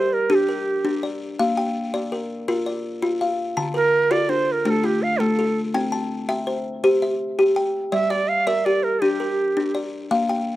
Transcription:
Already playing: kalimba G4 A#4 D5, native american-style wooden flute C5
0.13 native american-style wooden flute A#4
0.30 kalimba D4 G4, native american-style wooden flute A4
0.35 native american-style wooden flute G4
0.49 kalimba A#4
0.85 kalimba D4
1.03 kalimba D5
1.39 kalimba A#3 F5
1.57 kalimba G5
1.94 kalimba D5
2.12 kalimba A#4
2.48 kalimba F4 A#4
2.66 kalimba D5
3.02 kalimba F4
3.21 kalimba F5
3.57 kalimba D3 A5
3.74 kalimba A#4, native american-style wooden flute A#4
4.11 kalimba F4 A4, native american-style wooden flute D5
4.29 kalimba D4, native american-style wooden flute C5
4.48 native american-style wooden flute C5
4.52 native american-style wooden flute A#4
4.65 kalimba A3 D4, native american-style wooden flute A#4
4.70 native american-style wooden flute A4
4.84 kalimba F4, native american-style wooden flute G4
5.02 native american-style wooden flute F5
5.19 kalimba A3, native american-style wooden flute A4
5.39 kalimba A4
5.74 kalimba C4 G5
5.92 kalimba A5
6.29 kalimba E5 G5
6.47 kalimba C5
6.84 kalimba G4 C5
7.02 kalimba E5
7.39 kalimba G4
7.56 kalimba G5
7.92 kalimba G3 D5, native american-style wooden flute E5
8.10 native american-style wooden flute D5, kalimba E5
8.28 native american-style wooden flute F5
8.47 kalimba A#4 D5, native american-style wooden flute E5
8.65 kalimba G4, native american-style wooden flute D5
8.83 native american-style wooden flute A#4
9.02 kalimba D4 G4, native american-style wooden flute G4
9.20 kalimba A#4
9.57 kalimba D4
9.75 kalimba D5
10.11 kalimba A#3 F5
10.29 kalimba G5

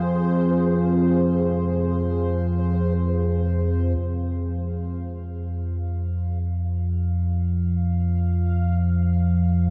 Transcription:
Already playing: synth drone F2 F3, ambient pad C4 G#4 F5, synth texture C5
3.93 synth drone F2 F3, synth texture F5

